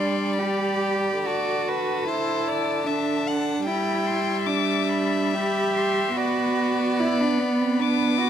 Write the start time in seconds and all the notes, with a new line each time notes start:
Already playing: G3 D4 D5 C6
0.38 G4 B5
1.24 D3 F#4 D5 A5
1.68 B4
2.08 E4 C5
2.48 D5
2.86 D4 E5
3.27 F#5
3.66 G3 E4 G5 B5
4.06 C6
4.46 D4 E5 D6
4.89 B5
5.34 G4 B5
5.76 C6
6.16 B3 F#4 D5 B5
6.98 E4 B5
7.21 D4
7.40 B3
7.61 C4
7.80 D4 B4 D6
8.20 F#4